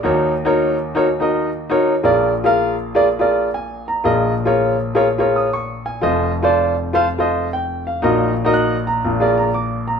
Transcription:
0.03 2.00 D#2 medium
0.03 2.00 D#3 medium
0.03 0.31 D#4 medium
0.03 0.32 F#4 medium
0.03 0.32 A#4 medium
0.03 0.32 C#5 medium
0.45 0.75 D#4 medium
0.45 0.75 F#4 medium
0.45 0.75 A#4 medium
0.45 0.75 C#5 medium
0.95 1.06 D#4 medium
0.95 1.06 F#4 medium
0.95 1.06 A#4 medium
0.95 1.07 C#5 medium
1.20 1.47 D#4 medium
1.20 1.48 F#4 medium
1.20 1.48 A#4 medium
1.20 1.48 D#5 medium
1.70 1.92 D#4 medium
1.70 1.93 F#4 medium
1.70 1.93 A#4 medium
1.70 1.93 C#5 medium
2.03 4.00 A#1 medium
2.03 4.00 A#2 medium
2.03 2.31 F4 medium
2.03 2.32 G#4 medium
2.03 2.32 A#4 medium
2.03 2.32 D5 medium
2.44 2.74 F4 medium
2.44 2.74 G#4 medium
2.44 2.75 A#4 medium
2.44 2.75 F5 medium
2.95 3.06 F4 medium
2.95 3.06 G#4 medium
2.95 3.06 A#4 medium
2.95 3.07 D5 medium
3.19 3.47 F4 medium
3.19 3.47 G#4 medium
3.19 3.48 A#4 medium
3.19 3.48 D5 medium
3.54 3.85 G#5 medium
3.88 4.35 A#5 medium
4.04 6.00 A#1 medium
4.04 6.00 A#2 medium
4.04 4.32 F4 medium
4.04 4.32 G#4 medium
4.04 4.32 A#4 medium
4.04 4.32 D#5 medium
4.45 4.75 F4 medium
4.45 4.75 G#4 medium
4.45 4.75 A#4 medium
4.45 4.75 C#5 medium
4.95 5.06 F4 medium
4.95 5.06 G#4 medium
4.95 5.06 A#4 medium
4.95 5.07 C#5 medium
5.18 5.47 F4 medium
5.18 5.47 G#4 medium
5.18 5.47 A#4 medium
5.18 5.47 C#5 medium
5.36 5.53 D#6 medium
5.53 5.85 C#6 medium
5.86 6.34 G#5 medium
6.01 7.99 F1 medium
6.01 7.99 F2 medium
6.01 6.30 F4 medium
6.01 6.31 A4 medium
6.01 6.31 C5 medium
6.01 6.31 D#5 medium
6.43 6.73 F4 medium
6.43 6.74 A4 medium
6.43 6.74 C5 medium
6.43 6.74 D5 medium
6.93 7.05 F4 medium
6.93 7.05 A4 medium
6.93 7.06 C5 medium
6.93 7.06 F5 loud
7.18 7.47 F4 medium
7.18 7.47 A4 medium
7.18 7.47 C5 medium
7.18 7.48 D#5 medium
7.53 7.85 G5 medium
7.87 8.34 F5 medium
8.02 9.00 A#1 medium
8.02 9.00 A#2 medium
8.02 8.31 D#4 medium
8.02 8.31 F#4 medium
8.02 8.32 A#4 medium
8.02 8.32 D#5 medium
8.45 8.75 D#4 medium
8.45 8.75 F#4 medium
8.45 8.75 A#4 medium
8.45 8.75 D#5 medium
8.54 8.85 F#6 medium
8.87 9.35 A#5 medium
9.05 10.00 A#1 medium
9.05 10.00 A#2 medium
9.20 9.48 F4 medium
9.20 9.48 G#4 medium
9.20 9.48 A#4 medium
9.20 9.49 D5 medium
9.38 9.54 A#5 medium
9.54 9.85 D6 medium
9.88 10.00 A#5 medium

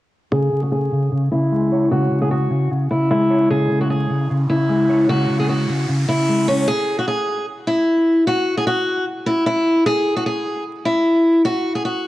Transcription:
0.32 0.51 C#3 medium
0.32 0.61 G#4 loud
0.52 0.91 C#3 medium
0.63 0.71 F#4 medium
0.72 1.09 G#4 medium
0.92 1.11 C#3 medium
1.12 1.30 C#3 medium
1.31 1.90 C#3 medium
1.31 1.88 E4 medium
1.52 2.51 G#3 medium
1.72 2.71 C#5 medium
1.91 2.10 C#3 medium
1.91 2.20 F#4 medium
2.11 2.49 C#3 medium
2.22 2.30 G#4 medium
2.31 2.68 F#4 medium
2.50 2.70 C#3 medium
2.71 2.90 C#3 medium
2.91 3.49 C#3 medium
2.91 3.08 E4 medium
3.10 4.10 G#3 medium
3.10 3.48 E4 medium
3.30 4.30 C#5 medium
3.50 3.69 C#3 loud
3.50 3.79 G#4 loud
3.50 riser medium
3.70 4.08 C#3 medium
3.81 3.89 F#4 medium
3.90 4.27 G#4 medium
4.10 4.29 C#3 medium
4.30 4.48 C#3 medium
4.49 5.08 C#3 medium
4.49 5.06 E4 medium
4.69 5.69 G#3 medium
4.90 5.89 C#5 medium
5.09 5.28 C#3 medium
5.09 5.38 F#4 loud
5.29 5.67 C#3 medium
5.39 5.48 G#4 medium
5.49 5.86 F#4 medium
5.69 5.87 C#3 medium
5.89 6.07 C#3 medium
6.08 6.68 C#3 medium
6.08 6.46 E4 medium
6.29 6.68 G#3 medium
6.48 6.66 C#4 medium
6.48 6.68 C#5 medium
6.68 6.96 G#4 loud
6.99 7.07 F#4 medium
7.08 7.45 G#4 medium
7.67 8.23 E4 medium
8.27 8.56 F#4 medium
8.57 8.66 G#4 medium
8.67 9.04 F#4 medium
9.26 9.44 E4 medium
9.46 9.84 E4 medium
9.86 10.15 G#4 loud
10.16 10.25 F#4 medium
10.26 10.63 G#4 medium
10.85 11.41 E4 medium
11.45 11.73 F#4 loud
11.75 11.84 G#4 medium
11.85 12.07 F#4 medium

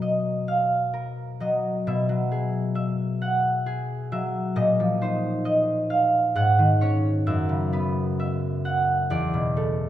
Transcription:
0.00 1.86 B2 medium
0.00 1.39 F#3 medium
0.00 0.92 A#4 medium
0.00 1.39 D#5 medium
0.48 1.26 F5 medium
0.94 1.89 A#4 medium
1.40 2.08 F#3 medium
1.40 1.90 D#5 medium
1.87 4.61 B2 medium
1.87 2.74 E5 medium
2.09 4.11 F#3 medium
2.32 3.65 G#4 medium
2.75 4.11 E5 medium
3.22 3.98 F#5 medium
3.66 7.56 G#4 medium
4.12 4.61 F#3 medium
4.12 4.61 E5 medium
4.56 6.39 A#2 medium
4.56 5.44 D#5 medium
4.80 6.40 F3 medium
5.01 7.30 D#4 medium
5.01 6.39 C5 medium
5.45 7.30 D#5 medium
5.90 6.67 F5 medium
6.35 7.30 G#2 medium
6.35 8.64 F#5 medium
6.59 7.31 D#3 medium
6.81 9.14 C#4 medium
6.81 9.13 C#5 medium
7.27 9.13 F#2 medium
7.27 8.18 E5 medium
7.49 9.13 C#3 medium
7.72 9.89 B3 medium
7.72 9.89 B4 medium
8.20 9.89 E5 medium
8.65 9.42 F#5 medium
9.10 9.89 E2 medium
9.10 9.89 D5 medium
9.34 9.89 B2 medium
9.56 9.89 A3 medium
9.56 9.89 A4 medium

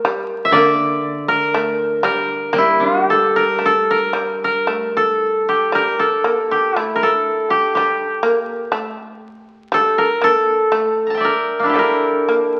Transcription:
0.00 0.86 A#4 medium
0.05 0.54 G3 medium
0.45 1.94 E5 medium
0.51 3.60 D3 medium
0.51 1.54 A#3 medium
0.51 2.12 D5 medium
1.28 2.04 A#4 medium
1.54 2.03 A3 medium
2.03 2.52 G3 medium
2.03 3.16 A#4 medium
2.53 5.73 G3 soft
2.53 3.58 A#3 medium
2.58 2.83 E4 medium
2.80 4.94 D4 soft
2.80 2.95 F4 medium
2.95 3.06 F#4 medium
3.06 4.62 G4 medium
3.06 3.42 A4 medium
3.36 3.71 A#4 medium
3.59 4.13 A3 medium
3.65 3.97 A4 medium
3.91 4.44 A#4 medium
4.13 4.67 G3 medium
4.44 5.03 A#4 medium
4.67 5.72 A3 medium
4.97 5.81 A4 medium
5.49 6.51 G4 medium
5.72 6.24 G3 medium
5.72 6.05 A#4 medium
5.99 7.01 A4 medium
6.24 6.76 A#3 medium
6.51 6.78 G4 medium
6.76 7.76 A3 medium
6.76 7.50 E4 medium
6.95 7.09 A#4 soft
7.03 8.93 A4 medium
7.50 7.75 G4 medium
7.75 8.22 G3 medium
7.75 9.79 G4 medium
8.23 8.71 A#3 medium
8.72 9.71 A3 medium
9.72 10.21 G3 medium
9.72 10.04 A4 medium
9.98 10.30 A#4 medium
10.21 10.71 A#3 medium
10.21 11.31 A4 medium
10.72 11.75 A3 medium
11.07 11.31 A5 soft
11.07 11.80 A#5 soft
11.14 12.60 E5 soft
11.14 12.49 G5 soft
11.20 12.60 D5 soft
11.25 11.78 A#4 medium
11.59 11.80 A#3 soft
11.59 12.60 D4 soft
11.66 12.60 E4 soft
11.66 12.60 G4 soft
11.74 12.28 G3 soft
11.74 12.60 A4 soft
11.79 12.60 A#4 medium
12.28 12.60 A#3 soft

